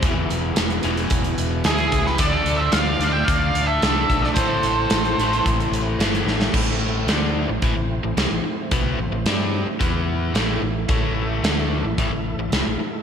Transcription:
<<
  \new Staff \with { instrumentName = "Lead electric guitar" } { \time 4/4 \key a \minor \tempo 4 = 110 r2. gis'8. b'16 | d''8. e''16 f''8. g''16 f''8. e''4 d''16 | c''2 r2 | r1 |
r1 | r1 | }
  \new Staff \with { instrumentName = "Lead electric guitar" } { \time 4/4 \key a \minor r2. e'8. g'16 | a'8. c''16 d''8. e''16 d''8. a'4 a'16 | a'2 r2 | r1 |
r1 | r1 | }
  \new Staff \with { instrumentName = "Tonewheel organ" } { \time 4/4 \key a \minor << { r1 | r1 | r1 | <a b c' d' e' f' g' a' b' c'' d''>8 r2. r8 |
r1 | r1 | } \\ { <b e' gis' e''>1 | <a d' f' d''>1 | <a c' e' c''>1 | <a c' e' c''>1~ |
<a c' e' c''>2 <b e' b'>4 <a e' a' e''>4~ | <a e' a' e''>1 | } >> }
  \new Staff \with { instrumentName = "Overdriven electric guitar" } { \clef bass \time 4/4 \key a \minor <e, b, e>4. <e, b, e>4. <e, b, e>4 | <d a d'>4. <d a d'>4. <d a d'>4 | <a, e a>4. <a, e a>4. <a, e a>4 | <a, e a>4 <d a d'>8. <a, e>16 <a, e>16 <a, e>8 <a, e>16 <c g>16 <a, e>16 r8 |
<b, fis b>8 <a, e>16 <a, e>16 <g d' g'>8. r16 <e b e'>4 <a, e a>8 <a, e>8 | <a, e a>4 <d a d'>8. <a, e>16 <a, e>16 <a, e>8 <a, e>16 <c g>16 <a, e>16 r8 | }
  \new Staff \with { instrumentName = "Fingered electric bass" } { \clef bass \time 4/4 \key a \minor e,,8 e,,8 e,,8 e,,8 e,,8 e,,8 d,8 cis,8 | d,8 d,8 d,8 d,8 d,8 d,8 c,8 b,,8 | a,,8 a,,8 a,,8 a,,8 a,,8 a,,8 g,,8 a,,8 | a,,4 d,8. a,,16 a,,16 a,,8 a,,16 c,16 a,,16 r8 |
b,,8 a,,16 a,,16 g,8. r16 e,4 a,,8 a,,8 | a,,4 d,8. a,,16 a,,16 a,,8 a,,16 c,16 a,,16 r8 | }
  \new DrumStaff \with { instrumentName = "Drums" } \drummode { \time 4/4 <hh bd>8 hh8 <hh sn>16 hh16 hh16 hh16 <hh bd>16 hh16 hh8 <hh sn>16 hh16 <hh bd>16 sn16 | <hh bd>8 hh8 <hh sn>8 hh8 <hh bd>8 hh8 <hh sn>8 <hh bd>16 sn16 | <hh bd>8 hh8 <hh sn>16 hh16 hh16 hh16 <hh bd>16 hh16 hh8 <hh sn>16 hh16 sn16 sn16 | <cymc bd>4 <hh sn>4 <hh bd>4 <hh sn>4 |
<hh bd>4 <hh sn>4 <hh bd>4 <hh sn>4 | <hh bd>4 <hh sn>4 <hh bd>4 <hh sn>4 | }
>>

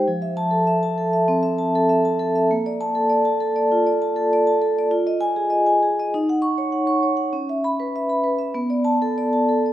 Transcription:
\new Staff \with { instrumentName = "Vibraphone" } { \time 4/4 \key f \dorian \tempo 4 = 99 << { r8 a''8 r2. | r8 a''8 r2. | r8 aes''8 r4. des'''8 r4 | r8 ces'''8 r4. a''8 r4 | } \\ { f16 e''8 a'16 e''16 a''16 a'16 e''16 c'16 e''16 a''16 a'16 e''16 a''16 a'16 e''16 | bes16 d''8 a'16 d''16 a''16 a'16 d''16 f'16 d''16 a''16 a'16 d''16 a''16 a'16 d''16 | f'16 ees''8 aes'16 ees''16 aes''16 aes'16 ees''16 ees'16 ges''8 des''16 ges''16 des'''16 des''16 ges''16 | des'16 fes''8 ces''16 fes''16 ces'''16 ces''16 fes''16 b16 d''8 a'16 d''16 a''16 a'16 d''16 | } >> }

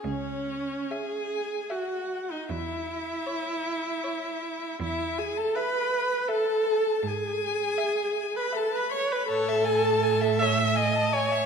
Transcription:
<<
  \new Staff \with { instrumentName = "Violin" } { \time 3/4 \key cis \minor \tempo 4 = 80 cis''4 gis''4 fis''8. dis''16 | e''2. | e''8 gis''16 a''16 b''4 a''4 | gis''4.~ gis''16 b''16 a''16 b''16 cis'''16 b''16 |
a''4. e'''8 dis'''8 cis'''8 | }
  \new Staff \with { instrumentName = "Violin" } { \time 3/4 \key cis \minor r4 e''8. r16 e''8. r16 | r4 cis''8. r16 cis''8. r16 | r4 e''8. r16 e''8. r16 | r4 e''8. r16 e''8. r16 |
cis''16 e''16 gis''16 a''16 gis''16 e''16 cis''16 e''16 gis''16 a''16 gis''16 e''16 | }
  \new Staff \with { instrumentName = "Viola" } { \time 3/4 \key cis \minor cis'4 gis'4 fis'8. dis'16 | e'2. | e'8 gis'16 a'16 b'4 a'4 | gis'4.~ gis'16 b'16 a'16 b'16 cis''16 b'16 |
a'4. e''8 dis''8 cis''8 | }
  \new Staff \with { instrumentName = "Cello" } { \clef bass \time 3/4 \key cis \minor cis,4 r2 | e,4 r2 | e,4 r2 | gis,4 r2 |
a,2. | }
>>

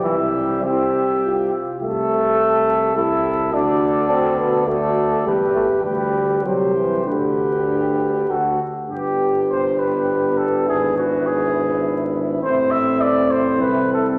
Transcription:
<<
  \new Staff \with { instrumentName = "Trumpet" } { \time 3/4 \key c \major \tempo 4 = 102 e''4 e''4. r8 | \key g \major e''2 e''4 | d''2 d''4 | b'4 b'4 c''4 |
b'2 a'8 r8 | g'4 c''8 b'4 a'8 | gis'8 fis'8 gis'4. r8 | c''8 e''8 d''8 c''8 b'8 a'8 | }
  \new Staff \with { instrumentName = "Flugelhorn" } { \time 3/4 \key c \major g'4 g'4. r8 | \key g \major a'2 a'4 | a'2 a'4 | g'4 g'4 g'4 |
g'2 fis'8 r8 | g'2. | e'2.~ | e'2. | }
  \new Staff \with { instrumentName = "French horn" } { \time 3/4 \key c \major e'4 e'8 r8 f'4 | \key g \major g'2 g'4 | fis'2 fis'4 | g'4 g'4 g'4 |
d'2 d'8 r8 | d'2.~ | d'2. | c'2. | }
  \new Staff \with { instrumentName = "Trombone" } { \time 3/4 \key c \major e8 g8 c'4. r8 | \key g \major a2 e'4 | d'4 c'8 b8 a4 | g8 a8 g4 fis8 e8 |
d2~ d8 r8 | b2.~ | b2. | a2. | }
  \new Staff \with { instrumentName = "Tuba" } { \clef bass \time 3/4 \key c \major c,2~ c,8 r8 | \key g \major c,2. | d,2. | e,4 d,4 c,4 |
d,2 d,8 r8 | g,,2. | gis,,2. | a,,2 c,4 | }
>>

